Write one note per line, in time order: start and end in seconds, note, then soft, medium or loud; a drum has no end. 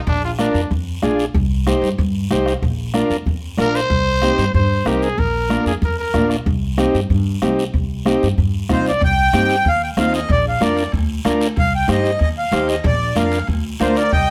0.07 0.45 A#1 loud
0.07 0.23 D4 medium
0.07 bombo low medium
0.07 high conga soft
0.07 long guiro medium
0.25 0.32 F4 medium
0.39 0.61 D4 medium
0.39 0.69 D4 medium
0.39 0.61 F4 medium
0.39 0.62 A#4 medium
0.39 bombo rim medium
0.39 high conga medium
0.39 short guiro medium
0.54 0.67 F2 medium
0.54 short guiro medium
0.71 0.96 F2 medium
0.71 bombo low medium
0.71 high conga soft
0.71 long guiro medium
1.02 1.28 A#1 medium
1.02 1.25 D4 medium
1.02 1.25 F4 medium
1.02 1.26 G#4 medium
1.02 bombo rim medium
1.02 high conga medium
1.02 short guiro medium
1.19 short guiro medium
1.34 1.73 C2 loud
1.34 bombo low medium
1.34 high conga soft
1.34 long guiro medium
1.67 1.89 D#4 medium
1.67 1.89 G4 medium
1.67 1.90 C5 medium
1.67 bombo rim medium
1.67 high conga medium
1.67 short guiro medium
1.82 1.95 G2 medium
1.82 short guiro medium
1.98 2.24 G2 loud
1.98 bombo low medium
1.98 high conga soft
1.98 long guiro medium
2.31 2.57 C2 medium
2.31 2.53 D#4 medium
2.31 2.53 G4 medium
2.31 2.54 C5 medium
2.31 bombo rim medium
2.31 high conga medium
2.31 short guiro medium
2.46 bombo rim medium
2.46 short guiro medium
2.62 3.01 A#1 loud
2.62 bombo low medium
2.62 high conga soft
2.62 long guiro medium
2.94 3.17 D4 medium
2.94 3.17 F4 medium
2.94 3.17 A#4 medium
2.94 bombo rim medium
2.94 high conga medium
2.94 short guiro medium
3.10 3.23 F2 medium
3.10 short guiro medium
3.26 3.52 F2 medium
3.26 bombo low medium
3.26 high conga soft
3.26 long guiro medium
3.57 3.84 A#1 medium
3.57 3.80 D4 medium
3.57 3.81 F4 medium
3.57 3.81 A#4 medium
3.57 3.77 A#4 medium
3.57 bombo rim medium
3.57 high conga medium
3.57 short guiro medium
3.75 4.54 C5 loud
3.75 short guiro medium
3.90 4.29 C2 loud
3.90 bombo low medium
3.90 high conga soft
3.90 long guiro medium
4.22 4.45 C4 medium
4.22 4.45 D#4 medium
4.22 4.45 G4 medium
4.22 bombo rim medium
4.22 high conga medium
4.22 short guiro medium
4.38 4.51 G2 medium
4.38 short guiro medium
4.54 4.80 G2 loud
4.54 4.89 C5 medium
4.54 bombo low medium
4.54 high conga soft
4.54 long guiro medium
4.85 5.12 C2 medium
4.85 5.09 C4 medium
4.85 5.09 D#4 medium
4.85 5.05 G4 medium
4.85 5.09 A#4 medium
4.85 bombo rim medium
4.85 high conga medium
4.85 short guiro medium
5.02 5.20 G#4 medium
5.02 short guiro medium
5.18 5.56 A#1 loud
5.18 5.66 A#4 loud
5.18 bombo low medium
5.18 high conga soft
5.18 long guiro medium
5.50 5.72 A#3 medium
5.50 5.73 D4 medium
5.50 5.73 F4 medium
5.50 bombo rim medium
5.50 high conga medium
5.50 short guiro medium
5.66 5.79 F2 medium
5.66 5.74 G#4 medium
5.66 short guiro medium
5.82 6.07 F2 medium
5.82 5.98 A#4 medium
5.82 bombo low medium
5.82 high conga soft
5.82 long guiro medium
5.99 6.28 A#4 medium
6.14 6.40 A#1 medium
6.14 6.36 A#3 medium
6.14 6.37 D4 medium
6.14 6.37 F4 medium
6.14 bombo low medium
6.14 bombo rim medium
6.14 high conga medium
6.14 short guiro medium
6.30 bombo rim medium
6.30 short guiro medium
6.46 6.84 C2 loud
6.46 bombo low medium
6.46 high conga soft
6.46 long guiro medium
6.78 7.00 C4 medium
6.78 7.00 D#4 medium
6.78 7.01 G4 loud
6.78 bombo rim medium
6.78 high conga medium
6.78 short guiro medium
6.94 7.07 G2 medium
6.94 short guiro medium
7.10 7.36 G2 loud
7.10 bombo low medium
7.10 high conga soft
7.10 long guiro medium
7.42 7.68 C2 medium
7.42 7.64 C4 medium
7.42 7.64 D#4 medium
7.42 7.64 G4 medium
7.42 bombo rim medium
7.42 high conga medium
7.42 short guiro medium
7.59 short guiro medium
7.74 8.12 C2 loud
7.74 bombo low medium
7.74 high conga soft
7.74 long guiro medium
8.06 8.28 C4 medium
8.06 8.28 D#4 medium
8.06 8.28 G4 medium
8.06 bombo rim medium
8.06 high conga medium
8.06 short guiro medium
8.23 8.35 G2 medium
8.23 short guiro medium
8.38 8.63 G2 medium
8.38 bombo low medium
8.38 high conga soft
8.38 long guiro medium
8.69 8.95 C2 medium
8.69 8.92 C4 medium
8.69 8.92 D#4 medium
8.69 8.93 F4 medium
8.69 8.86 C5 medium
8.69 bombo low medium
8.69 bombo rim medium
8.69 high conga medium
8.69 short guiro medium
8.86 9.02 D5 medium
8.86 short guiro medium
9.01 9.27 C2 loud
9.01 9.69 G5 loud
9.01 bombo low medium
9.01 high conga soft
9.01 high timbale medium
9.01 long guiro medium
9.33 9.59 G2 medium
9.33 9.56 C4 medium
9.33 9.56 D#4 medium
9.33 9.56 G4 medium
9.33 bombo rim medium
9.33 high conga medium
9.33 high timbale medium
9.33 short guiro medium
9.49 high timbale medium
9.49 short guiro medium
9.65 9.91 D#2 medium
9.65 9.82 F5 loud
9.65 bombo low medium
9.65 high conga soft
9.65 high timbale medium
9.65 long guiro medium
9.83 9.90 G5 medium
9.97 10.23 D#2 medium
9.97 10.20 C4 medium
9.97 10.20 D#4 medium
9.97 10.20 F4 medium
9.97 10.13 F5 medium
9.97 bombo rim medium
9.97 high conga medium
9.97 high timbale medium
9.97 low timbale medium
9.97 short guiro medium
10.13 10.31 D#5 medium
10.13 high timbale medium
10.13 short guiro medium
10.29 10.55 A#1 loud
10.29 10.45 D5 medium
10.29 bombo low medium
10.29 high conga soft
10.29 high timbale medium
10.29 long guiro medium
10.48 10.62 F5 medium
10.60 10.86 F2 medium
10.60 10.84 D4 medium
10.60 10.84 F4 medium
10.60 10.84 A#4 medium
10.60 10.92 D5 medium
10.60 bombo rim medium
10.60 high conga medium
10.60 high timbale medium
10.60 short guiro medium
10.77 high timbale medium
10.77 short guiro medium
10.92 11.19 D2 medium
10.92 bombo low medium
10.92 high conga soft
10.92 high timbale medium
10.92 long guiro medium
11.25 11.51 D2 medium
11.25 11.48 D4 medium
11.25 11.48 F4 medium
11.25 11.48 A#4 medium
11.25 bombo rim medium
11.25 high conga medium
11.25 high timbale medium
11.25 short guiro medium
11.41 high timbale medium
11.41 short guiro medium
11.56 11.83 C2 medium
11.56 11.73 F5 loud
11.56 bombo low medium
11.56 high conga soft
11.56 high timbale medium
11.56 long guiro medium
11.75 11.89 G5 medium
11.88 12.14 G2 medium
11.88 12.11 D#4 medium
11.88 12.11 G4 medium
11.88 12.12 C5 medium
11.88 12.20 D#5 medium
11.88 bombo rim medium
11.88 high conga medium
11.88 high timbale medium
11.88 short guiro medium
12.04 high timbale medium
12.04 short guiro medium
12.19 12.46 D#2 medium
12.19 12.29 D#5 medium
12.19 bombo low medium
12.19 high conga soft
12.19 high timbale medium
12.19 long guiro medium
12.38 12.67 F5 medium
12.52 12.78 D#2 medium
12.52 12.75 D#4 medium
12.52 12.75 G4 medium
12.52 12.75 C5 medium
12.52 bombo rim medium
12.52 high conga medium
12.52 high timbale medium
12.52 short guiro medium
12.68 12.84 D#5 medium
12.68 high timbale medium
12.68 short guiro medium
12.84 13.10 A#1 loud
12.84 13.15 D5 medium
12.84 bombo low medium
12.84 high conga soft
12.84 high timbale medium
12.84 long guiro medium
13.15 13.42 F2 medium
13.15 13.39 D4 medium
13.15 13.39 F4 medium
13.15 13.39 A#4 medium
13.15 13.47 F5 medium
13.15 bombo rim medium
13.15 high conga medium
13.15 high timbale medium
13.15 short guiro medium
13.32 high timbale medium
13.32 short guiro medium
13.47 13.74 D2 medium
13.47 bombo low medium
13.47 high conga soft
13.47 high timbale medium
13.47 long guiro medium
13.80 14.06 D2 medium
13.80 14.03 D4 medium
13.80 14.03 F4 medium
13.80 13.96 F4 medium
13.80 14.03 A#4 medium
13.80 13.96 C5 medium
13.80 bombo rim medium
13.80 high conga medium
13.80 high timbale medium
13.80 short guiro medium
13.95 14.12 A#4 medium
13.95 14.12 D5 medium
13.95 bombo rim medium
13.95 high timbale medium
13.95 short guiro medium
14.12 14.30 C2 medium
14.12 14.30 D#5 medium
14.12 14.30 G5 loud
14.12 bombo low medium
14.12 high conga soft
14.12 high timbale medium
14.12 long guiro medium